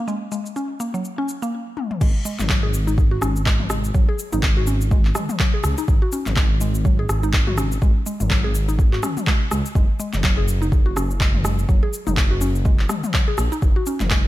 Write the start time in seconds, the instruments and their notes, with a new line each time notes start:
0.08 synth pluck G#3, shaker
0.32 synth pluck G#3, shaker
0.46 shaker
0.56 synth pluck C#4, shaker
0.80 synth pluck A#3, shaker
0.94 synth pluck F#3, shaker
1.05 shaker
1.18 synth pluck C#4
1.29 shaker
1.42 synth pluck A#3, shaker
1.77 high tom
1.91 mid tom
2.01 detuned saw bass G#1, synth pluck G#3, kick, crash, shaker
2.25 synth pluck G#3, shaker
2.39 detuned saw bass G#1, clap, mid tom, shaker
2.49 synth pluck F#3, kick, clap, shaker
2.63 synth pluck G#4
2.74 shaker
2.87 synth pluck D#4, shaker
2.98 kick, shaker
3.11 synth pluck F#4
3.21 detuned saw bass G#1, synth pluck C#4, cross-stick, shaker
3.36 shaker
3.46 synth pluck G#3, kick, clap, shaker
3.60 mid tom
3.70 synth pluck G#3, cross-stick, shaker
3.84 shaker
3.94 detuned saw bass G#1, synth pluck F#3, kick, shaker
4.09 synth pluck G#4
4.19 shaker
4.32 detuned saw bass G#1, synth pluck D#4, mid tom, shaker
4.43 kick, clap, shaker
4.57 synth pluck F#4
4.67 synth pluck C#4, shaker
4.81 shaker
4.91 synth pluck G#3, kick, shaker
5.05 clap
5.15 synth pluck G#3, cross-stick, mid tom, shaker
5.29 mid tom, shaker
5.40 synth pluck F#3, kick, clap, shaker
5.54 synth pluck G#4
5.64 detuned saw bass C#2, cross-stick, shaker
5.78 synth pluck D#4, shaker
5.88 detuned saw bass G#1, kick, shaker
6.02 synth pluck F#4
6.12 synth pluck C#4, shaker
6.26 detuned saw bass G#1, clap, mid tom, shaker
6.36 synth pluck G#3, kick, clap, shaker
6.61 synth pluck G#3, shaker
6.75 shaker
6.85 synth pluck F#3, kick, shaker
6.99 synth pluck G#4
7.09 detuned saw bass G#1, cross-stick, shaker
7.23 synth pluck D#4, shaker
7.33 kick, clap, shaker
7.47 synth pluck F#4, mid tom
7.58 synth pluck C#4, cross-stick, shaker
7.72 shaker
7.82 detuned saw bass G#1, synth pluck G#3, kick, shaker
8.06 synth pluck G#3, shaker
8.20 detuned saw bass G#1, mid tom, shaker
8.30 synth pluck F#3, kick, clap, shaker
8.44 synth pluck G#4
8.55 shaker
8.69 synth pluck D#4, shaker
8.79 kick, shaker
8.93 synth pluck F#4, clap
9.03 synth pluck C#4, cross-stick, mid tom, shaker
9.17 mid tom, shaker
9.27 synth pluck G#3, kick, clap, shaker
9.51 detuned saw bass C#2, synth pluck G#3, cross-stick, shaker
9.66 shaker
9.75 detuned saw bass F#1, synth pluck G#3, kick, shaker
10.00 synth pluck G#3, shaker
10.13 detuned saw bass F#1, clap, mid tom, shaker
10.23 synth pluck F#3, kick, clap, shaker
10.37 synth pluck G#4
10.48 shaker
10.62 synth pluck D#4, shaker
10.72 kick, shaker
10.86 synth pluck F#4
10.96 detuned saw bass F#1, synth pluck C#4, cross-stick, shaker
11.11 shaker
11.20 synth pluck G#3, kick, clap, shaker
11.34 mid tom
11.44 synth pluck G#3, cross-stick, shaker
11.59 shaker
11.69 detuned saw bass F#1, synth pluck F#3, kick, shaker
11.83 synth pluck G#4
11.93 shaker
12.07 detuned saw bass F#1, synth pluck D#4, mid tom, shaker
12.17 kick, clap, shaker
12.31 synth pluck F#4
12.41 synth pluck C#4, shaker
12.55 shaker
12.65 synth pluck G#3, kick, shaker
12.79 clap
12.89 synth pluck G#3, cross-stick, mid tom, shaker
13.04 mid tom, shaker
13.14 synth pluck F#3, kick, clap, shaker
13.28 synth pluck G#4
13.38 detuned saw bass A#1, cross-stick, shaker
13.52 synth pluck D#4, shaker
13.62 detuned saw bass F#1, kick, shaker
13.76 synth pluck F#4
13.86 synth pluck C#4, shaker
14.00 detuned saw bass F#1, clap, mid tom, shaker
14.11 synth pluck G#3, kick, clap, shaker